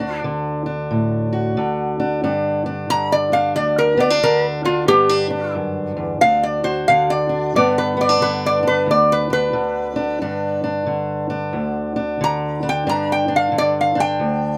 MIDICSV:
0, 0, Header, 1, 3, 480
1, 0, Start_track
1, 0, Key_signature, 1, "major"
1, 0, Tempo, 665188
1, 1609, Time_signature, 4, 2, 24, 8
1, 10518, End_track
2, 0, Start_track
2, 0, Title_t, "Resonator guitar played with a steel bar"
2, 0, Program_c, 0, 25
2, 0, Note_on_c, 0, 66, 94
2, 157, Note_off_c, 0, 66, 0
2, 2094, Note_on_c, 0, 82, 108
2, 2247, Note_off_c, 0, 82, 0
2, 2254, Note_on_c, 0, 74, 80
2, 2404, Note_on_c, 0, 77, 81
2, 2407, Note_off_c, 0, 74, 0
2, 2562, Note_off_c, 0, 77, 0
2, 2567, Note_on_c, 0, 74, 84
2, 2723, Note_off_c, 0, 74, 0
2, 2731, Note_on_c, 0, 70, 81
2, 2885, Note_off_c, 0, 70, 0
2, 2889, Note_on_c, 0, 74, 80
2, 3044, Note_off_c, 0, 74, 0
2, 3056, Note_on_c, 0, 70, 79
2, 3208, Note_off_c, 0, 70, 0
2, 3358, Note_on_c, 0, 65, 82
2, 3519, Note_off_c, 0, 65, 0
2, 3523, Note_on_c, 0, 67, 97
2, 3992, Note_off_c, 0, 67, 0
2, 4483, Note_on_c, 0, 77, 95
2, 4642, Note_off_c, 0, 77, 0
2, 4643, Note_on_c, 0, 74, 72
2, 4789, Note_off_c, 0, 74, 0
2, 4792, Note_on_c, 0, 72, 86
2, 4957, Note_off_c, 0, 72, 0
2, 4964, Note_on_c, 0, 77, 86
2, 5123, Note_off_c, 0, 77, 0
2, 5125, Note_on_c, 0, 74, 94
2, 5439, Note_off_c, 0, 74, 0
2, 5456, Note_on_c, 0, 74, 93
2, 5609, Note_off_c, 0, 74, 0
2, 5615, Note_on_c, 0, 71, 74
2, 5769, Note_off_c, 0, 71, 0
2, 5779, Note_on_c, 0, 74, 82
2, 5931, Note_off_c, 0, 74, 0
2, 5932, Note_on_c, 0, 71, 82
2, 6087, Note_off_c, 0, 71, 0
2, 6107, Note_on_c, 0, 74, 86
2, 6255, Note_off_c, 0, 74, 0
2, 6260, Note_on_c, 0, 71, 81
2, 6411, Note_off_c, 0, 71, 0
2, 6428, Note_on_c, 0, 74, 81
2, 6576, Note_off_c, 0, 74, 0
2, 6582, Note_on_c, 0, 71, 81
2, 6723, Note_off_c, 0, 71, 0
2, 6731, Note_on_c, 0, 71, 90
2, 7663, Note_off_c, 0, 71, 0
2, 8831, Note_on_c, 0, 82, 87
2, 9131, Note_off_c, 0, 82, 0
2, 9157, Note_on_c, 0, 79, 84
2, 9300, Note_off_c, 0, 79, 0
2, 9304, Note_on_c, 0, 82, 82
2, 9453, Note_off_c, 0, 82, 0
2, 9468, Note_on_c, 0, 79, 77
2, 9615, Note_off_c, 0, 79, 0
2, 9641, Note_on_c, 0, 77, 77
2, 9781, Note_off_c, 0, 77, 0
2, 9801, Note_on_c, 0, 74, 90
2, 9941, Note_off_c, 0, 74, 0
2, 9963, Note_on_c, 0, 77, 70
2, 10102, Note_off_c, 0, 77, 0
2, 10104, Note_on_c, 0, 79, 85
2, 10518, Note_off_c, 0, 79, 0
2, 10518, End_track
3, 0, Start_track
3, 0, Title_t, "Steel-string acoustic guitar"
3, 0, Program_c, 1, 25
3, 0, Note_on_c, 1, 38, 68
3, 0, Note_on_c, 1, 50, 64
3, 0, Note_on_c, 1, 62, 60
3, 166, Note_off_c, 1, 50, 0
3, 174, Note_on_c, 1, 50, 59
3, 473, Note_off_c, 1, 62, 0
3, 476, Note_on_c, 1, 62, 57
3, 654, Note_on_c, 1, 45, 60
3, 957, Note_on_c, 1, 66, 64
3, 1124, Note_off_c, 1, 50, 0
3, 1132, Note_off_c, 1, 45, 0
3, 1133, Note_on_c, 1, 50, 69
3, 1438, Note_off_c, 1, 62, 0
3, 1441, Note_on_c, 1, 62, 60
3, 1591, Note_off_c, 1, 66, 0
3, 1609, Note_off_c, 1, 38, 0
3, 1613, Note_off_c, 1, 62, 0
3, 1613, Note_on_c, 1, 43, 77
3, 1616, Note_on_c, 1, 62, 68
3, 1916, Note_off_c, 1, 62, 0
3, 1919, Note_on_c, 1, 62, 67
3, 2084, Note_off_c, 1, 50, 0
3, 2093, Note_on_c, 1, 50, 59
3, 2393, Note_off_c, 1, 62, 0
3, 2396, Note_on_c, 1, 62, 67
3, 2564, Note_on_c, 1, 38, 63
3, 2571, Note_off_c, 1, 43, 0
3, 2865, Note_off_c, 1, 62, 0
3, 2868, Note_on_c, 1, 59, 66
3, 2961, Note_off_c, 1, 59, 0
3, 2961, Note_on_c, 1, 62, 55
3, 3045, Note_off_c, 1, 50, 0
3, 3053, Note_on_c, 1, 50, 63
3, 3344, Note_off_c, 1, 62, 0
3, 3353, Note_on_c, 1, 62, 67
3, 3518, Note_off_c, 1, 62, 0
3, 3518, Note_on_c, 1, 43, 76
3, 3521, Note_on_c, 1, 59, 67
3, 3527, Note_off_c, 1, 38, 0
3, 3676, Note_off_c, 1, 59, 0
3, 3676, Note_on_c, 1, 62, 56
3, 3817, Note_off_c, 1, 62, 0
3, 3826, Note_on_c, 1, 62, 62
3, 4005, Note_on_c, 1, 42, 58
3, 4302, Note_off_c, 1, 42, 0
3, 4305, Note_on_c, 1, 40, 62
3, 4467, Note_off_c, 1, 62, 0
3, 4477, Note_off_c, 1, 40, 0
3, 4480, Note_on_c, 1, 38, 70
3, 4484, Note_on_c, 1, 62, 58
3, 4485, Note_off_c, 1, 43, 0
3, 4789, Note_on_c, 1, 66, 64
3, 4961, Note_off_c, 1, 50, 0
3, 4970, Note_on_c, 1, 50, 64
3, 5254, Note_off_c, 1, 62, 0
3, 5263, Note_on_c, 1, 62, 56
3, 5425, Note_off_c, 1, 62, 0
3, 5428, Note_off_c, 1, 66, 0
3, 5446, Note_off_c, 1, 38, 0
3, 5448, Note_off_c, 1, 50, 0
3, 5451, Note_on_c, 1, 43, 68
3, 5457, Note_on_c, 1, 50, 58
3, 5463, Note_on_c, 1, 59, 62
3, 5467, Note_on_c, 1, 62, 67
3, 5747, Note_off_c, 1, 62, 0
3, 5750, Note_off_c, 1, 59, 0
3, 5750, Note_on_c, 1, 59, 66
3, 5837, Note_off_c, 1, 59, 0
3, 5837, Note_on_c, 1, 62, 50
3, 5916, Note_off_c, 1, 50, 0
3, 5925, Note_on_c, 1, 50, 60
3, 6217, Note_off_c, 1, 62, 0
3, 6226, Note_on_c, 1, 62, 61
3, 6396, Note_on_c, 1, 38, 63
3, 6412, Note_off_c, 1, 43, 0
3, 6709, Note_off_c, 1, 62, 0
3, 6712, Note_on_c, 1, 62, 63
3, 6870, Note_off_c, 1, 50, 0
3, 6878, Note_on_c, 1, 50, 66
3, 7183, Note_off_c, 1, 62, 0
3, 7186, Note_on_c, 1, 62, 67
3, 7365, Note_off_c, 1, 38, 0
3, 7370, Note_off_c, 1, 62, 0
3, 7372, Note_on_c, 1, 43, 73
3, 7373, Note_on_c, 1, 62, 67
3, 7673, Note_off_c, 1, 62, 0
3, 7676, Note_on_c, 1, 62, 66
3, 7831, Note_off_c, 1, 50, 0
3, 7840, Note_on_c, 1, 50, 58
3, 8151, Note_off_c, 1, 62, 0
3, 8154, Note_on_c, 1, 62, 68
3, 8319, Note_on_c, 1, 38, 65
3, 8332, Note_off_c, 1, 43, 0
3, 8627, Note_off_c, 1, 62, 0
3, 8630, Note_on_c, 1, 62, 65
3, 8800, Note_off_c, 1, 50, 0
3, 8808, Note_on_c, 1, 50, 69
3, 9109, Note_off_c, 1, 62, 0
3, 9112, Note_on_c, 1, 62, 66
3, 9284, Note_off_c, 1, 38, 0
3, 9284, Note_off_c, 1, 62, 0
3, 9285, Note_on_c, 1, 43, 77
3, 9287, Note_on_c, 1, 62, 70
3, 9582, Note_off_c, 1, 62, 0
3, 9585, Note_on_c, 1, 62, 64
3, 9745, Note_off_c, 1, 50, 0
3, 9754, Note_on_c, 1, 50, 66
3, 10066, Note_off_c, 1, 62, 0
3, 10068, Note_on_c, 1, 62, 65
3, 10245, Note_on_c, 1, 38, 65
3, 10246, Note_off_c, 1, 43, 0
3, 10518, Note_off_c, 1, 38, 0
3, 10518, Note_off_c, 1, 50, 0
3, 10518, Note_off_c, 1, 62, 0
3, 10518, End_track
0, 0, End_of_file